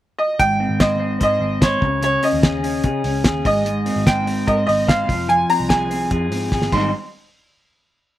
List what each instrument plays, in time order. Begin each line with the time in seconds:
0.18 upright piano D#5
0.39 picked electric bass G#1, clean electric guitar G#2, upright piano G5, kick, closed hi-hat
0.60 clean electric guitar C4
0.69 picked electric bass G#1
0.80 clean electric guitar C5, upright piano D#5, kick, snare, closed hi-hat
1.00 clean electric guitar C4
1.20 picked electric bass G#2, clean electric guitar C5, upright piano D#5, kick, closed hi-hat
1.40 picked electric bass G#1, clean electric guitar C4
1.61 clean electric guitar C5, upright piano C#5, kick, snare, closed hi-hat
1.81 picked electric bass C#2, clean electric guitar C#3, kick
2.02 clean electric guitar C#3, upright piano C#5, closed hi-hat
2.23 clean electric guitar C#4, upright piano D#5, open hi-hat
2.33 picked electric bass D#2
2.43 clean electric guitar G#4, kick, snare, closed hi-hat
2.63 clean electric guitar C#4, open hi-hat
2.84 picked electric bass C#3, clean electric guitar G#4, kick, closed hi-hat
3.04 picked electric bass C#2, clean electric guitar C#4, open hi-hat
3.24 clean electric guitar G#4, kick, snare, closed hi-hat
3.45 picked electric bass G#1, clean electric guitar G#2, upright piano D#5, kick, open hi-hat
3.66 clean electric guitar G#2, closed hi-hat
3.86 clean electric guitar C4, open hi-hat
3.96 picked electric bass G#1
4.07 clean electric guitar C5, upright piano G5, kick, snare, closed hi-hat
4.27 clean electric guitar C4, open hi-hat
4.47 picked electric bass G#2, clean electric guitar A#4, upright piano D#5, kick, closed hi-hat
4.57 clean electric guitar C5
4.67 picked electric bass G#1, clean electric guitar C4, upright piano D#5, open hi-hat
4.87 clean electric guitar C5, upright piano F5, kick, snare, closed hi-hat
5.08 picked electric bass F1, clean electric guitar F3, kick, open hi-hat
5.28 clean electric guitar F3, upright piano G#5, closed hi-hat
5.49 clean electric guitar C4, upright piano A#5, open hi-hat
5.60 picked electric bass C2
5.69 clean electric guitar G#4, upright piano G#5, kick, snare, closed hi-hat
5.90 clean electric guitar C4, open hi-hat
6.11 picked electric bass F2, clean electric guitar G#4, kick, closed hi-hat
6.31 picked electric bass G#2, clean electric guitar C4, open hi-hat
6.52 picked electric bass G#1, clean electric guitar G#4, kick, snare
6.62 snare
6.72 picked electric bass G#1, clean electric guitar G#2 D#3 G3 C4 D#4 C5, upright piano C6, kick, crash